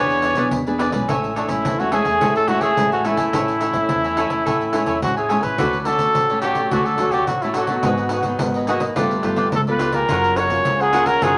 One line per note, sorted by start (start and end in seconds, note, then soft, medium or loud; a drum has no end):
0.00 0.32 E2 medium
0.00 0.50 E3 medium
0.00 0.34 B3 medium
0.00 0.78 B3 medium
0.00 0.34 D4 medium
0.00 0.22 E4 medium
0.00 0.22 G#4 medium
0.00 0.34 G#4 medium
0.00 0.22 B4 medium
0.00 0.80 C#5 medium
0.00 0.23 D5 medium
0.10 pandeiro soft
0.22 0.35 E4 soft
0.22 0.36 G#4 soft
0.22 0.36 B4 medium
0.22 0.36 D5 medium
0.22 pandeiro medium
0.35 0.49 B1 medium
0.35 0.61 B3 medium
0.35 0.61 D4 medium
0.35 0.46 E4 medium
0.35 0.47 G#4 medium
0.35 0.61 G#4 medium
0.35 0.47 B4 medium
0.35 0.47 D5 medium
0.35 pandeiro soft
0.51 0.88 E2 loud
0.51 1.06 B2 medium
0.51 pandeiro medium
0.67 0.91 B3 medium
0.67 0.91 D4 medium
0.67 0.91 G#4 medium
0.67 0.78 G#4 soft
0.67 0.78 B4 soft
0.67 0.79 D5 soft
0.67 pandeiro soft
0.78 0.92 E4 medium
0.78 0.93 G#4 medium
0.78 0.92 B4 medium
0.78 0.91 D5 medium
0.78 pandeiro medium
0.92 1.05 B1 medium
0.92 1.32 G#3 medium
0.92 1.32 C#4 medium
0.92 1.32 E4 medium
0.92 1.07 G#4 soft
0.92 1.07 B4 soft
0.92 1.06 D5 soft
0.92 pandeiro medium
1.08 1.45 A1 medium
1.08 1.62 A2 soft
1.08 5.27 A3 loud
1.08 1.34 A4 medium
1.08 1.35 C#5 medium
1.08 1.35 E5 medium
1.08 1.36 G#5 medium
1.08 pandeiro medium
1.24 pandeiro soft
1.35 1.51 D4 medium
1.35 1.77 A4 soft
1.35 1.78 C#5 medium
1.35 1.78 E5 medium
1.35 1.78 G#5 medium
1.35 pandeiro medium
1.49 1.62 A1 medium
1.49 1.73 G#3 medium
1.49 1.74 C#4 medium
1.49 1.81 E4 medium
1.49 1.74 E4 medium
1.49 pandeiro medium
1.65 2.01 E2 medium
1.65 2.18 E3 medium
1.65 pandeiro medium
1.79 1.89 G#3 medium
1.79 1.89 C#4 medium
1.79 1.89 E4 medium
1.79 1.94 F#4 medium
1.79 1.91 C#5 soft
1.79 1.91 E5 soft
1.79 1.92 G#5 soft
1.79 pandeiro soft
1.92 2.09 G#3 medium
1.92 2.09 C#4 medium
1.92 2.09 E4 medium
1.92 2.35 G#4 loud
1.92 2.05 A4 medium
1.92 2.05 C#5 medium
1.92 2.05 E5 medium
1.92 2.04 G#5 medium
1.92 pandeiro medium
2.05 2.18 E2 medium
2.05 2.20 C#5 soft
2.05 2.20 E5 soft
2.05 2.19 G#5 soft
2.05 pandeiro soft
2.20 2.57 A1 medium
2.20 2.74 A2 medium
2.20 2.44 G#3 medium
2.20 2.45 C#4 medium
2.20 2.45 E4 medium
2.20 2.47 A4 medium
2.20 2.48 C#5 medium
2.20 2.49 E5 medium
2.20 2.49 G#5 medium
2.20 pandeiro medium
2.36 2.50 A4 medium
2.36 pandeiro soft
2.47 2.72 G#3 medium
2.47 2.72 C#4 soft
2.47 2.72 E4 medium
2.47 2.63 F#4 medium
2.47 2.60 A4 soft
2.47 2.61 C#5 soft
2.47 2.61 E5 soft
2.47 2.62 G#5 medium
2.47 pandeiro medium
2.61 2.74 E2 medium
2.61 2.91 G#4 medium
2.61 2.72 A4 medium
2.61 2.72 C#5 medium
2.61 2.72 E5 medium
2.61 2.72 G#5 medium
2.61 pandeiro soft
2.76 3.13 A1 medium
2.76 3.31 E3 medium
2.76 2.94 G#3 medium
2.76 2.94 C#4 medium
2.76 2.94 E4 medium
2.76 pandeiro medium
2.92 3.07 F#4 medium
2.92 3.04 C#5 soft
2.92 3.05 E5 soft
2.92 3.05 G#5 soft
2.92 pandeiro soft
3.04 3.29 G#3 medium
3.04 3.29 C#4 medium
3.04 5.03 E4 medium
3.04 3.29 E4 medium
3.04 3.18 A4 medium
3.04 3.18 C#5 medium
3.04 3.17 E5 medium
3.04 3.17 G#5 medium
3.04 pandeiro medium
3.17 3.31 E2 medium
3.17 3.33 C#5 soft
3.17 3.32 E5 soft
3.17 3.32 G#5 soft
3.17 pandeiro medium
3.33 3.70 A1 medium
3.33 3.87 A2 soft
3.33 3.72 C#4 soft
3.33 3.72 E4 medium
3.33 3.60 A4 medium
3.33 3.60 C#5 medium
3.33 3.61 E5 medium
3.33 3.61 G#5 medium
3.33 pandeiro medium
3.48 pandeiro soft
3.61 4.03 A4 soft
3.61 4.03 C#5 soft
3.61 4.03 E5 soft
3.61 4.03 G#5 medium
3.61 pandeiro medium
3.73 3.87 A1 medium
3.73 4.13 C#4 medium
3.73 4.13 E4 medium
3.73 pandeiro medium
3.89 4.26 E2 medium
3.89 4.44 E3 soft
3.89 pandeiro medium
4.04 4.17 C#5 soft
4.04 4.17 E5 soft
4.04 4.18 G#5 soft
4.04 pandeiro soft
4.17 4.70 C#4 medium
4.17 4.70 E4 medium
4.17 4.31 A4 medium
4.17 4.31 C#5 medium
4.17 4.30 E5 medium
4.17 4.29 G#5 medium
4.17 pandeiro medium
4.30 4.43 E2 medium
4.30 4.45 C#5 soft
4.30 4.45 E5 soft
4.30 4.44 G#5 soft
4.30 pandeiro medium
4.45 4.83 A1 medium
4.45 5.00 A2 medium
4.45 4.72 A4 medium
4.45 4.73 C#5 medium
4.45 4.73 E5 medium
4.45 4.74 G#5 medium
4.45 pandeiro medium
4.61 pandeiro soft
4.73 4.98 G#3 soft
4.73 4.98 C#4 medium
4.73 4.98 E4 medium
4.73 4.85 A4 soft
4.73 4.85 C#5 soft
4.73 4.85 E5 soft
4.73 4.86 G#5 medium
4.73 pandeiro medium
4.86 5.00 E2 medium
4.86 4.97 A4 medium
4.86 4.97 C#5 medium
4.86 4.97 E5 medium
4.86 4.97 G#5 medium
4.86 pandeiro soft
5.02 5.39 A1 medium
5.02 5.56 E3 soft
5.02 5.26 G#3 soft
5.02 5.27 C#4 soft
5.02 5.27 E4 soft
5.02 5.16 F#4 medium
5.02 pandeiro medium
5.17 5.44 G#4 medium
5.17 5.28 C#5 soft
5.17 5.28 E5 soft
5.17 5.28 G#5 soft
5.17 pandeiro soft
5.29 5.54 G#3 medium
5.29 5.54 C#4 soft
5.29 5.55 E4 medium
5.29 5.43 A4 medium
5.29 5.41 C#5 medium
5.29 5.41 E5 medium
5.29 5.40 G#5 medium
5.29 pandeiro medium
5.41 5.56 A1 medium
5.41 5.81 B4 loud
5.41 5.57 C#5 soft
5.41 5.57 E5 soft
5.41 5.56 G#5 soft
5.41 pandeiro medium
5.58 6.07 D2 medium
5.58 6.13 D3 soft
5.58 7.85 F#3 medium
5.58 5.76 A3 soft
5.58 5.76 C#4 soft
5.58 5.84 F#4 medium
5.58 5.76 F#4 medium
5.58 5.85 A4 medium
5.58 5.85 C#5 medium
5.58 5.86 D5 medium
5.58 pandeiro medium
5.73 pandeiro soft
5.81 5.87 B4 medium
5.85 6.13 A3 medium
5.85 6.14 C#4 soft
5.85 6.28 F#4 soft
5.85 6.14 F#4 medium
5.85 6.41 A4 medium
5.85 6.28 A4 soft
5.85 6.28 C#5 medium
5.85 6.28 D5 medium
5.85 pandeiro medium
5.99 pandeiro medium
6.15 6.64 A1 medium
6.15 6.69 A2 medium
6.15 pandeiro medium
6.30 6.68 A3 medium
6.30 6.68 C#4 medium
6.30 6.69 F#4 medium
6.30 6.43 A4 soft
6.30 6.43 C#5 soft
6.30 6.43 D5 soft
6.30 pandeiro soft
6.42 6.56 F#4 medium
6.42 6.73 G4 medium
6.42 6.57 A4 medium
6.42 6.57 C#5 medium
6.42 6.55 D5 medium
6.42 pandeiro medium
6.55 6.71 A4 soft
6.55 6.71 C#5 soft
6.55 6.70 D5 soft
6.55 pandeiro soft
6.71 6.96 D2 medium
6.71 7.26 D3 medium
6.71 6.96 A3 medium
6.71 6.96 C#4 medium
6.71 6.87 F#4 medium
6.71 6.98 F#4 medium
6.71 6.96 F#4 medium
6.71 6.99 A4 medium
6.71 6.99 C#5 medium
6.71 7.00 D5 medium
6.71 pandeiro medium
6.86 7.13 A4 medium
6.86 pandeiro soft
6.98 7.23 D2 medium
6.98 7.26 A3 medium
6.98 7.26 C#4 soft
6.98 7.11 F#4 medium
6.98 7.27 F#4 medium
6.98 7.11 A4 medium
6.98 7.12 C#5 medium
6.98 7.12 D5 medium
6.98 pandeiro medium
7.11 7.22 F#4 medium
7.11 7.29 G4 medium
7.11 7.22 A4 medium
7.11 7.23 C#5 medium
7.11 7.23 D5 medium
7.11 pandeiro soft
7.27 7.76 A1 medium
7.27 7.82 A2 soft
7.27 7.44 F#4 medium
7.27 pandeiro medium
7.42 7.66 A3 medium
7.42 7.67 C#4 medium
7.42 7.56 E4 medium
7.42 7.67 F#4 medium
7.42 7.56 A4 soft
7.42 7.57 C#5 soft
7.42 7.56 D5 soft
7.42 pandeiro soft
7.54 8.40 F#4 medium
7.54 7.69 F#4 medium
7.54 7.70 A4 medium
7.54 7.69 C#5 medium
7.54 7.68 D5 medium
7.54 pandeiro medium
7.67 8.07 F#3 medium
7.67 8.08 B3 soft
7.67 8.08 D#4 medium
7.67 7.84 A4 soft
7.67 7.83 C#5 soft
7.67 7.83 D5 soft
7.67 pandeiro medium
7.83 8.32 G#1 loud
7.83 8.38 G#2 soft
7.83 8.40 B3 medium
7.83 8.11 F#4 medium
7.83 8.12 G#4 medium
7.83 8.12 B4 medium
7.83 8.12 D#5 medium
7.83 pandeiro medium
7.98 pandeiro soft
8.09 8.54 F#4 soft
8.09 pandeiro medium
8.13 8.54 G#4 soft
8.13 8.54 B4 soft
8.13 8.54 D#5 soft
8.23 8.64 F#3 medium
8.23 8.64 B3 medium
8.23 8.64 D#4 medium
8.23 pandeiro medium
8.39 8.88 G#1 medium
8.39 8.95 D#3 soft
8.39 8.69 B3 medium
8.39 pandeiro medium
8.54 8.67 G#4 soft
8.54 8.68 B4 soft
8.54 8.68 D#5 soft
8.54 pandeiro soft
8.67 8.85 F#3 medium
8.67 8.94 A#3 medium
8.67 8.85 B3 medium
8.67 8.86 D#4 medium
8.67 8.82 F#4 medium
8.67 8.81 G#4 medium
8.67 8.80 B4 medium
8.67 8.80 D#5 medium
8.67 pandeiro medium
8.80 8.95 G#4 soft
8.80 8.95 B4 soft
8.80 8.95 D#5 soft
8.80 pandeiro medium
8.95 9.21 G1 medium
8.95 9.51 G3 medium
8.95 9.78 A3 medium
8.95 9.14 B3 medium
8.95 9.23 F4 medium
8.95 9.14 F4 medium
8.95 9.23 G4 medium
8.95 9.14 A4 medium
8.95 9.24 B4 medium
8.95 9.24 D5 medium
8.95 pandeiro medium
9.11 pandeiro soft
9.23 9.48 G1 medium
9.23 9.51 B3 soft
9.23 9.36 F4 medium
9.23 9.51 F4 medium
9.23 9.36 G4 soft
9.23 9.51 A4 medium
9.23 9.36 B4 medium
9.23 9.37 D5 medium
9.23 pandeiro medium
9.36 9.47 F4 medium
9.36 9.47 G4 medium
9.36 9.47 B4 medium
9.36 9.48 D5 medium
9.36 pandeiro soft
9.52 10.01 C#2 medium
9.52 9.61 A4 medium
9.52 pandeiro medium
9.67 9.92 B3 medium
9.67 9.92 F4 medium
9.67 9.79 G4 soft
9.67 9.92 A4 medium
9.67 9.79 B4 soft
9.67 9.96 B4 medium
9.67 9.80 D5 soft
9.67 pandeiro soft
9.79 9.93 F4 medium
9.79 9.93 G4 medium
9.79 9.93 B4 medium
9.79 9.92 D5 medium
9.79 pandeiro medium
9.92 10.46 A#3 medium
9.92 10.46 F4 medium
9.92 10.08 G4 soft
9.92 10.47 G#4 medium
9.92 10.38 A#4 medium
9.92 10.08 B4 soft
9.92 10.07 D5 soft
9.92 pandeiro medium
10.09 10.58 F#1 medium
10.09 10.63 F#3 soft
10.09 11.38 C#4 medium
10.09 10.37 F4 medium
10.09 10.36 A#4 medium
10.09 10.36 C#5 medium
10.09 10.37 F#5 medium
10.09 pandeiro medium
10.24 pandeiro soft
10.36 10.79 A#4 soft
10.36 10.83 C#5 loud
10.36 10.79 C#5 medium
10.36 10.79 F#5 medium
10.36 pandeiro medium
10.50 10.89 A#3 medium
10.50 10.89 F4 medium
10.50 10.89 G#4 medium
10.50 pandeiro medium
10.65 11.14 C#2 medium
10.65 11.20 C#3 soft
10.65 pandeiro medium
10.80 11.08 G#4 medium
10.80 10.92 A#4 soft
10.80 10.93 C#5 soft
10.80 10.93 F#5 soft
10.80 pandeiro soft
10.92 11.38 A#3 medium
10.92 11.06 F4 medium
10.92 11.38 F4 soft
10.92 11.38 G#4 medium
10.92 11.07 A#4 medium
10.92 11.07 C#5 medium
10.92 11.06 F#5 medium
10.92 pandeiro medium
11.06 11.25 A#4 medium
11.06 11.21 A#4 soft
11.06 11.21 C#5 soft
11.06 11.21 F#5 soft
11.06 pandeiro medium
11.22 11.38 F#1 medium
11.22 11.38 F#3 medium
11.22 11.38 F4 medium
11.22 11.38 G#4 medium
11.22 11.38 A#4 medium
11.22 11.38 C#5 medium
11.22 11.38 F#5 medium
11.22 pandeiro medium